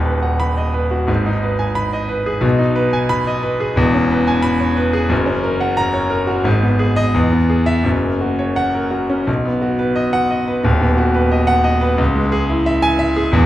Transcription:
Already playing: D#1 D#2 D#4
0.05 B4
0.23 F#5
0.40 B5
0.57 D#5
0.74 B4
0.91 F#4
1.07 G#1 G#2
1.26 D#4
1.43 B4
1.59 G#5
1.75 B5
1.93 D#5
2.09 B4
2.26 G#4
2.41 B1 B2
2.59 D#4
2.76 B4
2.93 G#5
3.09 B5
3.27 D#5
3.43 B4
3.60 G#4
3.76 E1 E2
3.94 C#4
4.11 B4
4.27 G#5
4.42 B5
4.60 C#5
4.77 B4
4.93 G#4
5.09 F#1 F#2
5.26 C#4
5.43 A#4
5.61 F#5
5.77 A#5
5.93 C#5
6.10 A#4
6.27 F#4
6.44 G#1 G#2
6.62 B3
6.79 G#4
6.96 D#5
7.14 E2
7.32 B3
7.50 G#4
7.66 E5
7.83 F#1 F#2
8.03 A#3
8.21 F#4
8.39 C#5
8.56 F#5
8.74 A#4
8.91 F#4
9.09 C#4
9.27 B1
9.45 B3
9.62 F#4
9.79 B4
9.96 D#5
10.13 F#5
10.30 D#5
10.48 B4
10.64 D#1 D#2
10.81 B3
10.97 F#4
11.15 B4
11.31 D#5
11.47 F#5
11.64 D#5
11.81 B4
11.98 C#2
12.15 G#3
12.32 G#4
12.50 E4
12.66 E5
12.82 G#5
12.99 E5
13.16 G#4
13.32 E1 E2

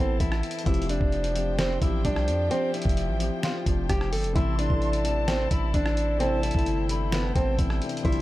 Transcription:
Already playing: A1 E3 C4 E4 A4 C5 A5
0.00 A4
0.20 A1 E4, kick, closed hi-hat
0.32 cross-stick
0.43 closed hi-hat
0.51 closed hi-hat
0.59 closed hi-hat
0.64 F1 F3 C4 E4 G4 G5, kick, closed hi-hat
0.68 G4
0.74 closed hi-hat
0.82 closed hi-hat
0.89 D4, closed hi-hat
1.01 F1, kick
1.12 closed hi-hat
1.24 closed hi-hat
1.33 F3 C4, closed hi-hat
1.38 G4
1.58 C4, snare, closed hi-hat
1.80 A1 F3 C4 E4, kick, closed hi-hat
1.84 G4
2.05 C2 D4, kick, closed hi-hat
2.16 cross-stick
2.28 F2, closed hi-hat
2.49 F3 C4, closed hi-hat
2.53 G4
2.74 E4, closed hi-hat
2.82 F1, kick, closed hi-hat
2.89 closed hi-hat
2.97 closed hi-hat
3.09 A1
3.18 F3 C4, closed hi-hat
3.22 G4
3.43 F4, snare, closed hi-hat
3.64 F1 F3 C4, kick, closed hi-hat
3.68 D4
3.89 F1 G4, kick, cross-stick, closed hi-hat
4.01 cross-stick
4.12 G1 A4, closed hi-hat, open hi-hat
4.24 F1, closed hi-hat
4.33 A1 C3 E3 A3 E4 A4 C5 A5 C6, kick, closed hi-hat
4.38 E4
4.59 D4, closed hi-hat
4.68 A1 C3 E3 A3, kick
4.72 E4
4.82 closed hi-hat
4.93 closed hi-hat
5.02 C3 E3 A3 A5, closed hi-hat
5.07 D4
5.28 C4, snare, closed hi-hat
5.51 A1 E4 B5, kick, closed hi-hat
5.74 A1 D4, kick, closed hi-hat
5.86 cross-stick
5.97 closed hi-hat
6.18 C3 E3 A3 C4 G5 A5, closed hi-hat
6.22 E4
6.43 E4, closed hi-hat
6.51 G1 C3 E3, kick, closed hi-hat
6.56 A3 E4, closed hi-hat
6.66 closed hi-hat
6.87 C3 E3 A3 B5, closed hi-hat
6.92 D4
7.12 B3, snare, closed hi-hat
7.33 A1 C3 E3 A3 C4 A5, kick, closed hi-hat
7.38 C4
7.59 A1 E4, kick, closed hi-hat
7.70 cross-stick
7.80 C3 E3 A3, closed hi-hat
7.84 D4
7.89 closed hi-hat
7.97 closed hi-hat
8.03 G1 C3 F3 G3 E4 D5 C6, kick, closed hi-hat
8.07 D4
8.12 closed hi-hat

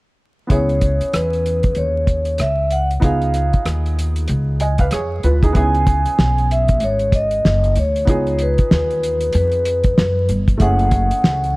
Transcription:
0.47 C#2 B3 C#4 E4, kick, closed hi-hat
0.51 G#4 C#5
0.69 closed hi-hat
0.81 kick, closed hi-hat
1.01 muted upright bass stroke, closed hi-hat
1.13 E2 B4, cross-stick, closed hi-hat
1.33 closed hi-hat
1.46 closed hi-hat
1.63 kick, closed hi-hat
1.75 D#2 C#5, closed hi-hat
2.07 kick, closed hi-hat
2.25 closed hi-hat
2.38 C#2 E5, cross-stick, closed hi-hat
2.71 F#5, closed hi-hat
2.91 closed hi-hat
3.00 C#2 B3 D#4 F4 F5, kick, closed hi-hat
3.04 G#4
3.22 closed hi-hat
3.34 cross-stick, closed hi-hat
3.53 muted upright bass stroke, kick, closed hi-hat
3.65 D#2, cross-stick, closed hi-hat
3.86 closed hi-hat
3.99 closed hi-hat
4.16 closed hi-hat
4.28 C#2, closed hi-hat
4.60 D#5 G#5, closed hi-hat
4.78 B4 F5, kick, closed hi-hat
4.91 F2 G#4 C#5, cross-stick, closed hi-hat
5.23 D2 F4 B4, closed hi-hat
5.43 D#4 G#4, kick, closed hi-hat
5.52 C#2 B3 C#4 E4, kick, closed hi-hat
5.56 G#4 G#5
5.74 closed hi-hat
5.87 kick, closed hi-hat
6.06 muted upright bass stroke, closed hi-hat
6.18 B1, snare
6.38 closed hi-hat
6.51 E5, closed hi-hat
6.68 kick, closed hi-hat
6.80 G#1 C#5, closed hi-hat
6.99 closed hi-hat
7.12 D#5, kick, closed hi-hat
7.31 closed hi-hat
7.45 F#1, snare
7.64 closed hi-hat
7.75 D2 C#5, closed hi-hat
7.96 closed hi-hat
8.05 C#2 B3 D#4 F4, kick, closed hi-hat
8.09 G#4
8.27 closed hi-hat
8.39 B4, closed hi-hat
8.58 muted upright bass stroke, kick, closed hi-hat
8.71 D#2 B4, snare
8.91 closed hi-hat
9.03 closed hi-hat
9.20 closed hi-hat
9.33 F2 B4, closed hi-hat
9.52 closed hi-hat
9.65 closed hi-hat
9.84 kick, closed hi-hat
9.98 F#2, snare
10.29 G1, closed hi-hat
10.48 kick, closed hi-hat
10.58 F#1 A3 C#4 E4 F#5, kick, closed hi-hat
10.62 G#4
10.79 closed hi-hat
10.91 kick, closed hi-hat
11.11 muted upright bass stroke, closed hi-hat
11.24 C#2, snare
11.44 closed hi-hat

